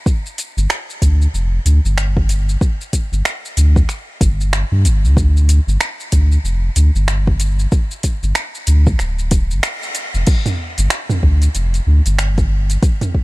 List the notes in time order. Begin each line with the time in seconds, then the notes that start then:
0.06 kick, shaker
0.26 shaker
0.38 closed hi-hat, shaker
0.57 G1, shaker
0.70 finger snap, shaker
0.90 shaker
1.02 D2, kick, closed hi-hat, shaker
1.22 shaker
1.34 F1, shaker
1.66 D2, closed hi-hat, shaker
1.85 G1, shaker
1.98 finger snap, shaker
2.17 kick
2.29 closed hi-hat, shaker
2.49 shaker
2.61 kick, shaker
2.81 shaker
2.93 kick, closed hi-hat, shaker
3.12 G1, shaker
3.25 finger snap, shaker
3.45 shaker
3.57 D2, closed hi-hat, shaker
3.76 kick, shaker
3.89 finger snap, shaker
4.21 G1, kick, closed hi-hat, shaker
4.41 shaker
4.53 finger snap, shaker
4.72 G2
4.85 G1, closed hi-hat, shaker
5.04 D2, shaker
5.17 kick, shaker
5.37 shaker
5.49 closed hi-hat, shaker
5.67 G1, shaker
5.81 finger snap, shaker
6.00 shaker
6.12 D2, kick, closed hi-hat, shaker
6.32 shaker
6.44 F1, shaker
6.76 D2, closed hi-hat, shaker
6.95 G1, shaker
7.08 finger snap, shaker
7.27 kick
7.40 closed hi-hat, shaker
7.59 shaker
7.72 kick, shaker
7.91 shaker
8.03 kick, closed hi-hat, shaker
8.23 G1, shaker
8.35 finger snap, shaker
8.55 shaker
8.67 D2, closed hi-hat, shaker
8.87 kick, shaker
8.99 D1, finger snap, shaker
9.19 shaker
9.31 kick, closed hi-hat, shaker
9.50 G1, shaker
9.63 finger snap, shaker
9.83 shaker
9.95 closed hi-hat, shaker
10.14 F1, shaker
10.27 kick, closed hi-hat, crash, shaker
10.46 closed hi-hat, mid tom, shaker
10.78 G1, closed hi-hat, shaker
10.90 finger snap, closed hi-hat, shaker
11.10 mid tom, shaker
11.23 D2, kick
11.42 closed hi-hat, shaker
11.55 F1, closed hi-hat, shaker
11.74 closed hi-hat, shaker
11.87 D2
12.06 G1, closed hi-hat, shaker
12.19 finger snap, closed hi-hat, shaker
12.38 kick, closed hi-hat, shaker
12.70 closed hi-hat, shaker
12.83 kick, closed hi-hat, shaker
13.01 closed hi-hat, mid tom, shaker
13.15 kick